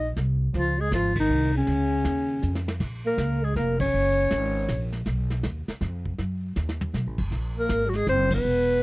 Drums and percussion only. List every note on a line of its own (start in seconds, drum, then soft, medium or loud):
0.16 snare soft
0.54 brush sweep soft
0.54 snare soft
0.92 snare medium
0.92 hi-hat pedal medium
1.16 kick medium
1.16 ride medium
1.67 brush sweep soft
1.67 snare soft
2.05 snare medium
2.05 hi-hat pedal soft
2.42 hi-hat pedal medium
2.55 snare medium
2.68 snare medium
2.80 brush sweep soft
2.80 kick medium
2.80 snare soft
2.80 crash medium
3.18 snare medium
3.18 hi-hat pedal medium
3.56 snare soft
3.80 kick medium
3.80 ride medium
3.93 brush sweep soft
4.31 snare medium
4.31 hi-hat pedal medium
4.68 snare medium
4.68 hi-hat pedal medium
4.93 snare soft
5.06 brush sweep soft
5.06 snare soft
5.30 snare soft
5.43 snare medium
5.43 hi-hat pedal medium
5.68 snare soft
5.81 snare soft
6.05 kick soft
6.18 brush sweep soft
6.18 snare soft
6.56 snare soft
6.69 snare medium
6.81 floor tom medium
6.94 snare medium
6.94 hi-hat pedal medium
7.18 kick medium
7.18 crash medium
7.32 brush sweep soft
7.32 snare soft
7.69 snare medium
7.69 hi-hat pedal medium
7.93 snare soft
8.07 snare soft
8.31 kick medium
8.31 ride medium
8.45 brush sweep soft